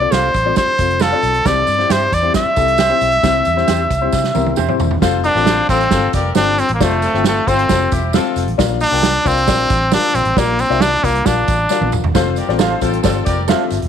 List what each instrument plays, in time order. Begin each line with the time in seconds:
Already playing: trumpet D5
0.00 upright piano C4 F4 A4 D5
0.11 fingered electric bass C2, clean electric guitar A4 C5 F5, trumpet C5, snare, closed hi-hat, tambourine
0.34 fingered electric bass A1, kick, closed hi-hat, tambourine
0.45 upright piano C4 F4 A4 D5
0.56 trumpet C5, kick, snare, closed hi-hat, tambourine
0.68 muted fingered electric bass stroke
0.78 fingered electric bass F1, upright piano C4 F4 A4 C5, kick, closed hi-hat, tambourine
0.90 closed hi-hat
1.00 clean electric guitar A4 C5 F5, trumpet A4, snare, closed hi-hat, tambourine
1.12 upright piano C4 F4 A4 D5
1.23 fingered electric bass B1, closed hi-hat, tambourine
1.34 closed hi-hat
1.45 fingered electric bass C2, upright piano C3 C4 E4 G4 C5, trumpet D5, kick, snare, closed hi-hat, tambourine
1.67 fingered electric bass G2, closed hi-hat, tambourine
1.78 upright piano C4 E4 G4 C5, snare
1.90 fingered electric bass G2, clean electric guitar G4 C5 E5, trumpet C5, snare, closed hi-hat, tambourine
2.12 fingered electric bass E2, trumpet D5, kick, closed hi-hat, tambourine
2.22 upright piano C4 E4 G4 C5
2.34 trumpet E5, kick, snare, closed hi-hat, tambourine
2.46 muted fingered electric bass stroke
2.56 fingered electric bass C2, upright piano C4 E4 G4 A4, kick, closed hi-hat, tambourine
2.68 closed hi-hat
2.78 clean electric guitar G4 C5 E5, snare, closed hi-hat, tambourine
2.89 upright piano C4 E4 G4 C5
3.01 fingered electric bass B1, closed hi-hat, tambourine
3.12 closed hi-hat
3.23 fingered electric bass C2, upright piano C3 C4 E4 G4 C5, kick, snare, closed hi-hat, tambourine
3.45 fingered electric bass E2, closed hi-hat, tambourine
3.56 upright piano C4 E4 G4 C5, snare
3.68 fingered electric bass E2, clean electric guitar G4 C5 E5, snare, closed hi-hat, tambourine
3.91 fingered electric bass C2, kick, closed hi-hat, tambourine
4.01 upright piano C4 E4 G4 C5
4.12 fingered electric bass C3, kick, snare, tambourine
4.24 snare
4.34 fingered electric bass C2, upright piano C4 E4 G4 A#4, high tom, tambourine
4.46 high tom
4.56 fingered electric bass E2, clean electric guitar G4 C5 E5, mid tom, tambourine
4.68 upright piano C4 E4 G4 C5, mid tom
4.79 fingered electric bass E1, floor tom, tambourine
4.91 floor tom
5.01 fingered electric bass F1, upright piano C4 F4 A4 C5 F5, horn section F4 A4 C5, kick, snare, tambourine
5.24 trumpet D4, horn section G4 A#4 D5, closed hi-hat, tambourine
5.35 fingered electric bass A1, upright piano C4 F4 A4 C5 F5, snare
5.46 horn section F4 A4 C5, snare, tambourine
5.69 fingered electric bass A1, upright piano C4 F4 A4 C5 F5, horn section C4 F4 A4, trumpet C4, kick, closed hi-hat, tambourine
5.80 closed hi-hat
5.91 fingered electric bass G1, upright piano C4 F4 A4 C5 F5, horn section C4 F4 A4, kick, snare, tambourine
6.13 fingered electric bass F1, horn section G4 A#4 D5, kick, closed hi-hat, tambourine
6.35 fingered electric bass G1, upright piano C4 F4 A4 C5 G5, trumpet D4, snare, tambourine
6.58 trumpet C4, closed hi-hat, tambourine
6.69 fingered electric bass A1, closed hi-hat
6.74 trumpet A#3
6.80 fingered electric bass F1, trumpet A3, upright piano C4 F4 A4 C5 D5, horn section F4 A4 C5, kick, snare, tambourine
7.02 horn section C4 F4 A4, closed hi-hat, tambourine
7.13 fingered electric bass G1, upright piano C4 F4 A4 C5 G5, snare
7.24 trumpet A3, horn section C4 F4 A4, snare, tambourine
7.47 fingered electric bass G1, upright piano C4 F4 A4 C5 G5, trumpet C4, horn section F4 A4 C5, kick, closed hi-hat, tambourine
7.59 closed hi-hat
7.69 fingered electric bass F1, upright piano C4 F4 A4 C5 G5, horn section C4 F4 A4, kick, snare, tambourine
7.92 fingered electric bass E1, horn section C4 E4 G4, kick, closed hi-hat, tambourine
8.13 upright piano C4 F4 A4 C5 F5, horn section C4 F4 A4, snare, tambourine
8.36 fingered electric bass F1, closed hi-hat, tambourine
8.47 fingered electric bass A1, closed hi-hat
8.58 fingered electric bass A#1, upright piano A#2 D4 F4 A#4 D5 F5, kick, snare, tambourine
8.81 trumpet D4, closed hi-hat, tambourine
8.91 fingered electric bass C2, upright piano D4 F4 A#4 D5 G5, snare
9.03 snare, tambourine
9.25 fingered electric bass C2, trumpet C4, upright piano D4 F4 A#4 D5 F5, kick, closed hi-hat, tambourine
9.37 closed hi-hat
9.47 fingered electric bass A#1, upright piano D4 F4 A#4 D5 F5, kick, snare, tambourine
9.70 fingered electric bass A1, kick, closed hi-hat, tambourine
9.91 upright piano D4 F4 A#4 D5 F5, trumpet D4, snare, tambourine
10.14 fingered electric bass A#1, trumpet C4, closed hi-hat, tambourine
10.25 fingered electric bass A1, closed hi-hat
10.37 fingered electric bass A#1, upright piano A#2 D4 F4 A#4 D5 F5, trumpet A#3, kick, snare, tambourine
10.59 trumpet C4, closed hi-hat, tambourine
10.70 fingered electric bass C2, upright piano D4 F4 A#4 D5 E5, snare
10.81 trumpet D4, snare, tambourine
11.03 fingered electric bass C2, trumpet A#3, upright piano D4 F4 A#4 D5 F5, kick, closed hi-hat, tambourine
11.15 closed hi-hat
11.25 fingered electric bass A#1, upright piano D4 F4 A#4 D5 F5, trumpet D4, kick, snare, tambourine
11.48 fingered electric bass A1, kick, closed hi-hat, tambourine
11.69 upright piano D4 F4 A#4 D5 F5, snare, tambourine
11.81 fingered electric bass A#1, high tom
11.92 fingered electric bass D#1, mid tom, tambourine
12.04 fingered electric bass E1, floor tom
12.14 fingered electric bass F1, upright piano C4 F4 A4 C5 F5, horn section F4 A4 C5, kick, snare, tambourine
12.36 horn section G4 A#4 D5, closed hi-hat, tambourine
12.48 fingered electric bass A1, upright piano C4 F4 A4 C5 D5, snare
12.58 horn section F4 A4 C5, clean electric guitar A4 C5 F5, snare, tambourine
12.81 fingered electric bass A1, horn section C4 F4 A4, upright piano C4 F4 A4 C5 F5, kick, closed hi-hat, tambourine
12.93 closed hi-hat
13.03 fingered electric bass G1, horn section C4 F4 A4, upright piano C4 F4 A4 C5 D5, kick, snare, tambourine
13.26 fingered electric bass F1, horn section G4 A#4 D5, kick, closed hi-hat, tambourine
13.48 upright piano C4 F4 A4 C5 E5, clean electric guitar A4 C5 F5, snare, tambourine
13.70 fingered electric bass G1, closed hi-hat, tambourine
13.82 fingered electric bass E1, closed hi-hat